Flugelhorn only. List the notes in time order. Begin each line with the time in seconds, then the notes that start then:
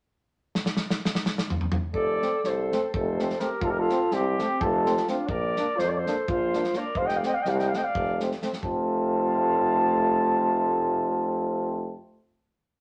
1.96 D5
2.47 C5
2.96 C5
3.40 A#4
3.65 A4
3.71 A#4
3.80 A4
4.13 G4
4.62 A4
5.09 F4
5.28 D5
5.79 C5
5.89 D5
5.98 C5
6.33 C5
6.78 D5
6.97 F5
7.07 G5
7.16 F5
7.26 G5
7.34 F5
7.41 G5
7.49 F5
7.58 G5
7.68 F5
7.76 G5
7.84 F5
8.65 A5